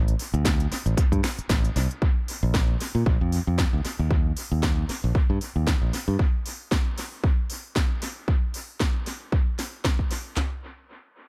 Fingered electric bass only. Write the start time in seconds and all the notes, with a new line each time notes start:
Already playing: A1
0.34 D2
0.71 muted fingered electric bass stroke
0.86 A1
1.12 G2
1.39 muted fingered electric bass stroke
1.50 A1
1.76 C2
2.43 A#1
2.95 A#2
3.06 A#1
3.21 F2
3.47 F2
3.73 D2
3.85 muted fingered electric bass stroke
3.99 D#2
4.52 D#2
4.89 muted fingered electric bass stroke
5.04 A#1
5.30 G2
5.56 D#2
5.82 A#1
5.93 muted fingered electric bass stroke
6.08 G2